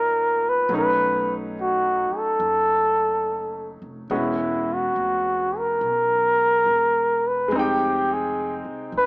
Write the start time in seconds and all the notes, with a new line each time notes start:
Already playing: D#2 F#3 B3 C#4 D#4 F4 A#4
0.49 B4
0.69 B1 F#3 A3 C#4
0.74 D#4 B4
1.61 F#4
2.11 muted upright bass stroke
2.18 A4
2.40 F#1
3.82 F1
4.10 E1 G#3 B3 C#4 D#4 F#4
4.16 E4
4.74 F#4
4.96 F1
5.58 A#4
5.81 B1
6.66 E1
7.28 B4
7.48 F1 G#3
7.52 C4 D#4
7.57 G4 G5
8.13 G#4
8.64 C2
8.92 D#2
8.97 B4